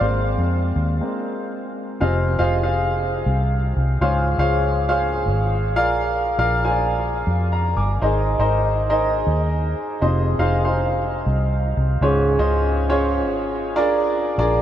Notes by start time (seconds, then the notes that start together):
0.01 G#1 G#3 A#3 C4 C5
0.39 F2
0.76 D#2
1.01 G#3 A#3 C4
2.00 F1 C3 F4 G#4 C5 D#5 F5
2.39 F1 F4 G#4 C5 D#5 F5
2.63 F4 G#4 C5 D#5 F5
3.26 C2
3.77 C2
4.01 C#2 G#2 F4 G#4 C5 C#5 F5
4.38 C#2 F4 G#4 C5 C#5 F5
4.88 F4 G#4 C5 C#5 F5
5.26 G#1
5.76 A#1 F4 G#4 A#4 D5 F5
6.39 A#1 F4 G#4 A#4 D5 F5
6.64 F4 G#4 A#4 C5 G#5
6.71 D5
7.27 F2
7.52 F5 A#5
7.76 G1 G#5 D6
8.02 G#1 D#4 G#4 A#4 C5 D#5
8.39 G#1 D#4 G#4 A#4 C5 D#5
8.90 D#4 G#4 A#4 C5 D#5
9.27 D#2
10.01 F1 C3 D#4 F4 G#4 C5 D#5
10.39 F1 D#4 F4 G#4 C5 F5
10.64 D#4 F4 G#4 C5 F5
11.26 C2
11.77 C2
12.01 C#2 G#2 C#4 F4 G#4 C5 C#5
12.39 C#2 C#4 F4 G#4 C5 D#5
12.89 C#4 F4 G#4 C5 C#5
13.26 G#1
13.76 A#1 D4 F4 G#4 A#4 D5
14.38 A#1 D4 F4 G#4 A#4 D5